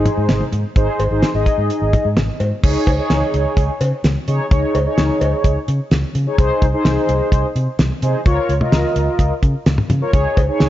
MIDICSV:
0, 0, Header, 1, 4, 480
1, 0, Start_track
1, 0, Key_signature, -5, "major"
1, 0, Tempo, 468750
1, 778, Time_signature, 4, 2, 24, 8
1, 10948, End_track
2, 0, Start_track
2, 0, Title_t, "Analog polysynth"
2, 0, Program_c, 0, 90
2, 0, Note_on_c, 0, 63, 88
2, 0, Note_on_c, 0, 68, 80
2, 0, Note_on_c, 0, 72, 96
2, 447, Note_off_c, 0, 63, 0
2, 447, Note_off_c, 0, 68, 0
2, 447, Note_off_c, 0, 72, 0
2, 778, Note_on_c, 0, 63, 83
2, 778, Note_on_c, 0, 68, 79
2, 778, Note_on_c, 0, 72, 97
2, 1059, Note_off_c, 0, 63, 0
2, 1059, Note_off_c, 0, 68, 0
2, 1059, Note_off_c, 0, 72, 0
2, 1139, Note_on_c, 0, 68, 78
2, 1140, Note_on_c, 0, 63, 86
2, 1140, Note_on_c, 0, 72, 92
2, 1326, Note_off_c, 0, 63, 0
2, 1326, Note_off_c, 0, 68, 0
2, 1326, Note_off_c, 0, 72, 0
2, 1379, Note_on_c, 0, 63, 86
2, 1379, Note_on_c, 0, 68, 80
2, 1379, Note_on_c, 0, 75, 100
2, 2127, Note_off_c, 0, 75, 0
2, 2128, Note_off_c, 0, 63, 0
2, 2128, Note_off_c, 0, 68, 0
2, 2696, Note_on_c, 0, 63, 87
2, 2696, Note_on_c, 0, 68, 80
2, 2697, Note_on_c, 0, 73, 97
2, 2978, Note_off_c, 0, 63, 0
2, 2978, Note_off_c, 0, 68, 0
2, 2979, Note_off_c, 0, 73, 0
2, 3055, Note_on_c, 0, 63, 90
2, 3055, Note_on_c, 0, 73, 101
2, 3056, Note_on_c, 0, 68, 80
2, 3806, Note_off_c, 0, 63, 0
2, 3806, Note_off_c, 0, 68, 0
2, 3806, Note_off_c, 0, 73, 0
2, 4375, Note_on_c, 0, 63, 89
2, 4375, Note_on_c, 0, 73, 94
2, 4376, Note_on_c, 0, 68, 79
2, 4564, Note_off_c, 0, 63, 0
2, 4564, Note_off_c, 0, 73, 0
2, 4565, Note_off_c, 0, 68, 0
2, 4615, Note_on_c, 0, 63, 88
2, 4615, Note_on_c, 0, 68, 80
2, 4615, Note_on_c, 0, 73, 98
2, 4897, Note_off_c, 0, 63, 0
2, 4898, Note_off_c, 0, 68, 0
2, 4898, Note_off_c, 0, 73, 0
2, 4976, Note_on_c, 0, 68, 83
2, 4976, Note_on_c, 0, 73, 95
2, 4977, Note_on_c, 0, 63, 89
2, 5726, Note_off_c, 0, 68, 0
2, 5726, Note_off_c, 0, 73, 0
2, 5727, Note_off_c, 0, 63, 0
2, 6418, Note_on_c, 0, 63, 90
2, 6418, Note_on_c, 0, 73, 98
2, 6419, Note_on_c, 0, 68, 81
2, 6512, Note_off_c, 0, 63, 0
2, 6512, Note_off_c, 0, 68, 0
2, 6512, Note_off_c, 0, 73, 0
2, 6537, Note_on_c, 0, 63, 87
2, 6537, Note_on_c, 0, 68, 83
2, 6537, Note_on_c, 0, 72, 98
2, 6819, Note_off_c, 0, 63, 0
2, 6819, Note_off_c, 0, 68, 0
2, 6819, Note_off_c, 0, 72, 0
2, 6897, Note_on_c, 0, 63, 87
2, 6897, Note_on_c, 0, 68, 84
2, 6897, Note_on_c, 0, 72, 98
2, 7647, Note_off_c, 0, 63, 0
2, 7647, Note_off_c, 0, 68, 0
2, 7647, Note_off_c, 0, 72, 0
2, 8217, Note_on_c, 0, 63, 87
2, 8217, Note_on_c, 0, 68, 79
2, 8218, Note_on_c, 0, 72, 96
2, 8405, Note_off_c, 0, 63, 0
2, 8405, Note_off_c, 0, 68, 0
2, 8405, Note_off_c, 0, 72, 0
2, 8455, Note_on_c, 0, 65, 89
2, 8455, Note_on_c, 0, 70, 79
2, 8455, Note_on_c, 0, 73, 98
2, 8738, Note_off_c, 0, 65, 0
2, 8738, Note_off_c, 0, 70, 0
2, 8738, Note_off_c, 0, 73, 0
2, 8815, Note_on_c, 0, 65, 87
2, 8815, Note_on_c, 0, 70, 79
2, 8816, Note_on_c, 0, 75, 97
2, 9566, Note_off_c, 0, 65, 0
2, 9566, Note_off_c, 0, 70, 0
2, 9566, Note_off_c, 0, 75, 0
2, 10256, Note_on_c, 0, 70, 79
2, 10257, Note_on_c, 0, 65, 89
2, 10257, Note_on_c, 0, 73, 100
2, 10351, Note_off_c, 0, 70, 0
2, 10351, Note_off_c, 0, 73, 0
2, 10352, Note_off_c, 0, 65, 0
2, 10375, Note_on_c, 0, 68, 82
2, 10376, Note_on_c, 0, 63, 86
2, 10376, Note_on_c, 0, 73, 97
2, 10658, Note_off_c, 0, 63, 0
2, 10658, Note_off_c, 0, 68, 0
2, 10658, Note_off_c, 0, 73, 0
2, 10736, Note_on_c, 0, 68, 78
2, 10737, Note_on_c, 0, 63, 87
2, 10737, Note_on_c, 0, 73, 97
2, 10948, Note_off_c, 0, 63, 0
2, 10948, Note_off_c, 0, 68, 0
2, 10948, Note_off_c, 0, 73, 0
2, 10948, End_track
3, 0, Start_track
3, 0, Title_t, "Fingered electric bass"
3, 0, Program_c, 1, 33
3, 180, Note_on_c, 1, 44, 96
3, 289, Note_off_c, 1, 44, 0
3, 300, Note_on_c, 1, 32, 110
3, 409, Note_off_c, 1, 32, 0
3, 538, Note_on_c, 1, 44, 100
3, 648, Note_off_c, 1, 44, 0
3, 778, Note_on_c, 1, 32, 110
3, 888, Note_off_c, 1, 32, 0
3, 1019, Note_on_c, 1, 32, 102
3, 1129, Note_off_c, 1, 32, 0
3, 1135, Note_on_c, 1, 32, 96
3, 1247, Note_off_c, 1, 32, 0
3, 1378, Note_on_c, 1, 32, 107
3, 1488, Note_off_c, 1, 32, 0
3, 1617, Note_on_c, 1, 44, 89
3, 1728, Note_off_c, 1, 44, 0
3, 1859, Note_on_c, 1, 32, 103
3, 1969, Note_off_c, 1, 32, 0
3, 2098, Note_on_c, 1, 44, 96
3, 2208, Note_off_c, 1, 44, 0
3, 2219, Note_on_c, 1, 32, 113
3, 2329, Note_off_c, 1, 32, 0
3, 2458, Note_on_c, 1, 44, 99
3, 2568, Note_off_c, 1, 44, 0
3, 2699, Note_on_c, 1, 37, 109
3, 2809, Note_off_c, 1, 37, 0
3, 2939, Note_on_c, 1, 37, 107
3, 3049, Note_off_c, 1, 37, 0
3, 3178, Note_on_c, 1, 37, 105
3, 3288, Note_off_c, 1, 37, 0
3, 3420, Note_on_c, 1, 37, 98
3, 3530, Note_off_c, 1, 37, 0
3, 3655, Note_on_c, 1, 37, 105
3, 3767, Note_off_c, 1, 37, 0
3, 3898, Note_on_c, 1, 49, 103
3, 4008, Note_off_c, 1, 49, 0
3, 4138, Note_on_c, 1, 37, 111
3, 4248, Note_off_c, 1, 37, 0
3, 4379, Note_on_c, 1, 49, 101
3, 4489, Note_off_c, 1, 49, 0
3, 4618, Note_on_c, 1, 37, 107
3, 4729, Note_off_c, 1, 37, 0
3, 4858, Note_on_c, 1, 37, 93
3, 4968, Note_off_c, 1, 37, 0
3, 5098, Note_on_c, 1, 37, 104
3, 5208, Note_off_c, 1, 37, 0
3, 5337, Note_on_c, 1, 37, 104
3, 5448, Note_off_c, 1, 37, 0
3, 5575, Note_on_c, 1, 37, 108
3, 5687, Note_off_c, 1, 37, 0
3, 5819, Note_on_c, 1, 49, 105
3, 5929, Note_off_c, 1, 49, 0
3, 6059, Note_on_c, 1, 37, 114
3, 6169, Note_off_c, 1, 37, 0
3, 6298, Note_on_c, 1, 49, 106
3, 6408, Note_off_c, 1, 49, 0
3, 6537, Note_on_c, 1, 36, 118
3, 6648, Note_off_c, 1, 36, 0
3, 6779, Note_on_c, 1, 36, 101
3, 6889, Note_off_c, 1, 36, 0
3, 7017, Note_on_c, 1, 36, 106
3, 7128, Note_off_c, 1, 36, 0
3, 7258, Note_on_c, 1, 36, 99
3, 7368, Note_off_c, 1, 36, 0
3, 7495, Note_on_c, 1, 36, 109
3, 7607, Note_off_c, 1, 36, 0
3, 7736, Note_on_c, 1, 48, 101
3, 7847, Note_off_c, 1, 48, 0
3, 7977, Note_on_c, 1, 36, 111
3, 8088, Note_off_c, 1, 36, 0
3, 8217, Note_on_c, 1, 48, 106
3, 8328, Note_off_c, 1, 48, 0
3, 8457, Note_on_c, 1, 37, 108
3, 8568, Note_off_c, 1, 37, 0
3, 8695, Note_on_c, 1, 37, 103
3, 8807, Note_off_c, 1, 37, 0
3, 8934, Note_on_c, 1, 37, 103
3, 9046, Note_off_c, 1, 37, 0
3, 9176, Note_on_c, 1, 37, 99
3, 9287, Note_off_c, 1, 37, 0
3, 9413, Note_on_c, 1, 37, 107
3, 9526, Note_off_c, 1, 37, 0
3, 9657, Note_on_c, 1, 49, 101
3, 9768, Note_off_c, 1, 49, 0
3, 9898, Note_on_c, 1, 37, 102
3, 10008, Note_off_c, 1, 37, 0
3, 10138, Note_on_c, 1, 49, 108
3, 10248, Note_off_c, 1, 49, 0
3, 10378, Note_on_c, 1, 37, 108
3, 10488, Note_off_c, 1, 37, 0
3, 10619, Note_on_c, 1, 37, 102
3, 10729, Note_off_c, 1, 37, 0
3, 10861, Note_on_c, 1, 37, 108
3, 10948, Note_off_c, 1, 37, 0
3, 10948, End_track
4, 0, Start_track
4, 0, Title_t, "Drums"
4, 57, Note_on_c, 9, 42, 72
4, 57, Note_on_c, 9, 45, 91
4, 159, Note_off_c, 9, 42, 0
4, 160, Note_off_c, 9, 45, 0
4, 294, Note_on_c, 9, 47, 91
4, 295, Note_on_c, 9, 42, 66
4, 298, Note_on_c, 9, 38, 115
4, 397, Note_off_c, 9, 42, 0
4, 397, Note_off_c, 9, 47, 0
4, 400, Note_off_c, 9, 38, 0
4, 417, Note_on_c, 9, 47, 64
4, 519, Note_off_c, 9, 47, 0
4, 537, Note_on_c, 9, 42, 74
4, 640, Note_off_c, 9, 42, 0
4, 778, Note_on_c, 9, 42, 72
4, 779, Note_on_c, 9, 36, 118
4, 880, Note_off_c, 9, 42, 0
4, 881, Note_off_c, 9, 36, 0
4, 1020, Note_on_c, 9, 56, 71
4, 1021, Note_on_c, 9, 42, 71
4, 1122, Note_off_c, 9, 56, 0
4, 1123, Note_off_c, 9, 42, 0
4, 1255, Note_on_c, 9, 38, 111
4, 1259, Note_on_c, 9, 42, 68
4, 1358, Note_off_c, 9, 38, 0
4, 1361, Note_off_c, 9, 42, 0
4, 1497, Note_on_c, 9, 36, 92
4, 1497, Note_on_c, 9, 42, 74
4, 1600, Note_off_c, 9, 36, 0
4, 1600, Note_off_c, 9, 42, 0
4, 1741, Note_on_c, 9, 42, 79
4, 1843, Note_off_c, 9, 42, 0
4, 1978, Note_on_c, 9, 36, 85
4, 1979, Note_on_c, 9, 42, 72
4, 1979, Note_on_c, 9, 45, 93
4, 2081, Note_off_c, 9, 36, 0
4, 2081, Note_off_c, 9, 42, 0
4, 2081, Note_off_c, 9, 45, 0
4, 2217, Note_on_c, 9, 47, 96
4, 2218, Note_on_c, 9, 42, 71
4, 2221, Note_on_c, 9, 38, 116
4, 2320, Note_off_c, 9, 42, 0
4, 2320, Note_off_c, 9, 47, 0
4, 2323, Note_off_c, 9, 38, 0
4, 2458, Note_on_c, 9, 42, 70
4, 2458, Note_on_c, 9, 56, 67
4, 2560, Note_off_c, 9, 56, 0
4, 2561, Note_off_c, 9, 42, 0
4, 2699, Note_on_c, 9, 36, 118
4, 2700, Note_on_c, 9, 49, 102
4, 2801, Note_off_c, 9, 36, 0
4, 2802, Note_off_c, 9, 49, 0
4, 2940, Note_on_c, 9, 36, 101
4, 2940, Note_on_c, 9, 56, 73
4, 2941, Note_on_c, 9, 42, 73
4, 3042, Note_off_c, 9, 36, 0
4, 3042, Note_off_c, 9, 56, 0
4, 3043, Note_off_c, 9, 42, 0
4, 3176, Note_on_c, 9, 38, 114
4, 3179, Note_on_c, 9, 42, 68
4, 3278, Note_off_c, 9, 38, 0
4, 3282, Note_off_c, 9, 42, 0
4, 3419, Note_on_c, 9, 42, 76
4, 3521, Note_off_c, 9, 42, 0
4, 3655, Note_on_c, 9, 36, 95
4, 3661, Note_on_c, 9, 42, 81
4, 3757, Note_off_c, 9, 36, 0
4, 3764, Note_off_c, 9, 42, 0
4, 3899, Note_on_c, 9, 42, 76
4, 3900, Note_on_c, 9, 56, 71
4, 4002, Note_off_c, 9, 42, 0
4, 4002, Note_off_c, 9, 56, 0
4, 4137, Note_on_c, 9, 42, 69
4, 4140, Note_on_c, 9, 38, 117
4, 4240, Note_off_c, 9, 42, 0
4, 4243, Note_off_c, 9, 38, 0
4, 4378, Note_on_c, 9, 42, 76
4, 4480, Note_off_c, 9, 42, 0
4, 4618, Note_on_c, 9, 36, 121
4, 4618, Note_on_c, 9, 42, 74
4, 4721, Note_off_c, 9, 36, 0
4, 4721, Note_off_c, 9, 42, 0
4, 4860, Note_on_c, 9, 56, 75
4, 4861, Note_on_c, 9, 42, 72
4, 4962, Note_off_c, 9, 56, 0
4, 4963, Note_off_c, 9, 42, 0
4, 5095, Note_on_c, 9, 38, 114
4, 5099, Note_on_c, 9, 42, 69
4, 5198, Note_off_c, 9, 38, 0
4, 5201, Note_off_c, 9, 42, 0
4, 5336, Note_on_c, 9, 56, 73
4, 5338, Note_on_c, 9, 42, 77
4, 5439, Note_off_c, 9, 56, 0
4, 5441, Note_off_c, 9, 42, 0
4, 5575, Note_on_c, 9, 36, 92
4, 5579, Note_on_c, 9, 42, 78
4, 5677, Note_off_c, 9, 36, 0
4, 5682, Note_off_c, 9, 42, 0
4, 5818, Note_on_c, 9, 42, 76
4, 5921, Note_off_c, 9, 42, 0
4, 6055, Note_on_c, 9, 42, 70
4, 6058, Note_on_c, 9, 38, 117
4, 6158, Note_off_c, 9, 42, 0
4, 6160, Note_off_c, 9, 38, 0
4, 6297, Note_on_c, 9, 42, 77
4, 6399, Note_off_c, 9, 42, 0
4, 6537, Note_on_c, 9, 42, 74
4, 6538, Note_on_c, 9, 36, 121
4, 6639, Note_off_c, 9, 42, 0
4, 6640, Note_off_c, 9, 36, 0
4, 6779, Note_on_c, 9, 36, 97
4, 6780, Note_on_c, 9, 42, 71
4, 6882, Note_off_c, 9, 36, 0
4, 6883, Note_off_c, 9, 42, 0
4, 7015, Note_on_c, 9, 38, 111
4, 7019, Note_on_c, 9, 42, 70
4, 7118, Note_off_c, 9, 38, 0
4, 7121, Note_off_c, 9, 42, 0
4, 7258, Note_on_c, 9, 42, 76
4, 7361, Note_off_c, 9, 42, 0
4, 7495, Note_on_c, 9, 36, 98
4, 7500, Note_on_c, 9, 42, 81
4, 7597, Note_off_c, 9, 36, 0
4, 7602, Note_off_c, 9, 42, 0
4, 7738, Note_on_c, 9, 42, 76
4, 7841, Note_off_c, 9, 42, 0
4, 7974, Note_on_c, 9, 42, 69
4, 7977, Note_on_c, 9, 38, 117
4, 8077, Note_off_c, 9, 42, 0
4, 8080, Note_off_c, 9, 38, 0
4, 8216, Note_on_c, 9, 42, 76
4, 8318, Note_off_c, 9, 42, 0
4, 8456, Note_on_c, 9, 42, 76
4, 8457, Note_on_c, 9, 36, 119
4, 8558, Note_off_c, 9, 42, 0
4, 8560, Note_off_c, 9, 36, 0
4, 8699, Note_on_c, 9, 42, 72
4, 8801, Note_off_c, 9, 42, 0
4, 8817, Note_on_c, 9, 47, 87
4, 8919, Note_off_c, 9, 47, 0
4, 8934, Note_on_c, 9, 38, 115
4, 8937, Note_on_c, 9, 42, 67
4, 9036, Note_off_c, 9, 38, 0
4, 9040, Note_off_c, 9, 42, 0
4, 9176, Note_on_c, 9, 42, 74
4, 9279, Note_off_c, 9, 42, 0
4, 9414, Note_on_c, 9, 36, 92
4, 9418, Note_on_c, 9, 42, 78
4, 9516, Note_off_c, 9, 36, 0
4, 9520, Note_off_c, 9, 42, 0
4, 9657, Note_on_c, 9, 36, 87
4, 9657, Note_on_c, 9, 42, 76
4, 9760, Note_off_c, 9, 36, 0
4, 9760, Note_off_c, 9, 42, 0
4, 9896, Note_on_c, 9, 42, 69
4, 9899, Note_on_c, 9, 38, 119
4, 9999, Note_off_c, 9, 42, 0
4, 10001, Note_off_c, 9, 38, 0
4, 10017, Note_on_c, 9, 45, 96
4, 10120, Note_off_c, 9, 45, 0
4, 10136, Note_on_c, 9, 45, 95
4, 10137, Note_on_c, 9, 42, 75
4, 10239, Note_off_c, 9, 42, 0
4, 10239, Note_off_c, 9, 45, 0
4, 10377, Note_on_c, 9, 42, 72
4, 10378, Note_on_c, 9, 36, 118
4, 10479, Note_off_c, 9, 42, 0
4, 10481, Note_off_c, 9, 36, 0
4, 10620, Note_on_c, 9, 36, 100
4, 10620, Note_on_c, 9, 56, 75
4, 10621, Note_on_c, 9, 42, 72
4, 10722, Note_off_c, 9, 36, 0
4, 10723, Note_off_c, 9, 56, 0
4, 10724, Note_off_c, 9, 42, 0
4, 10856, Note_on_c, 9, 38, 109
4, 10859, Note_on_c, 9, 42, 72
4, 10948, Note_off_c, 9, 38, 0
4, 10948, Note_off_c, 9, 42, 0
4, 10948, End_track
0, 0, End_of_file